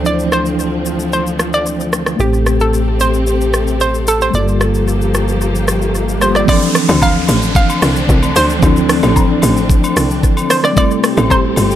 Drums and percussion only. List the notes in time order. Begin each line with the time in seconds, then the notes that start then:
0.05 shaker
0.19 shaker
0.32 cross-stick, shaker
0.46 shaker
0.59 shaker
0.86 shaker
1.00 shaker
1.13 shaker
1.27 shaker
1.39 cross-stick, shaker
1.53 shaker
1.66 shaker
1.80 shaker
1.93 cross-stick, shaker
2.06 cross-stick, shaker
2.20 shaker
2.34 shaker
2.46 cross-stick, shaker
2.60 shaker
2.74 shaker
3.00 shaker
3.14 shaker
3.27 shaker
3.41 shaker
3.54 cross-stick, shaker
3.67 shaker
3.80 shaker
3.94 shaker
4.07 shaker
4.21 shaker
4.34 shaker
4.48 shaker
4.61 cross-stick, shaker
4.74 shaker
4.88 shaker
5.01 shaker
5.14 cross-stick, shaker
5.28 shaker
5.41 shaker
5.55 shaker
5.68 cross-stick, shaker
5.82 shaker
5.95 shaker
6.09 shaker
6.21 cross-stick, shaker
6.35 cross-stick, shaker
6.48 kick, high agogo, shaker
6.62 shaker
6.75 cross-stick, open hi-hat, shaker
6.89 high agogo, shaker
7.02 kick, low woodblock, shaker
7.28 open hi-hat, high agogo, shaker
7.42 shaker
7.55 kick, shaker
7.70 high agogo, shaker
7.82 cross-stick, open hi-hat, shaker
7.96 shaker
8.09 kick, shaker
8.23 high agogo, shaker
8.36 open hi-hat, shaker
8.50 shaker
8.63 kick, high agogo, shaker
8.76 shaker
8.89 cross-stick, open hi-hat, shaker
9.03 high agogo, shaker
9.16 kick, low woodblock, shaker
9.42 open hi-hat, high agogo, shaker
9.57 shaker
9.70 kick, shaker
9.84 high agogo, shaker
9.97 cross-stick, open hi-hat, shaker
10.11 shaker
10.23 kick, shaker
10.37 high agogo, shaker
10.50 cross-stick, open hi-hat, shaker
10.64 cross-stick, shaker
10.77 kick, high agogo, shaker
10.91 shaker
11.04 cross-stick, open hi-hat, shaker
11.17 high agogo, shaker
11.30 kick, low woodblock, shaker
11.56 open hi-hat, high agogo, shaker
11.71 shaker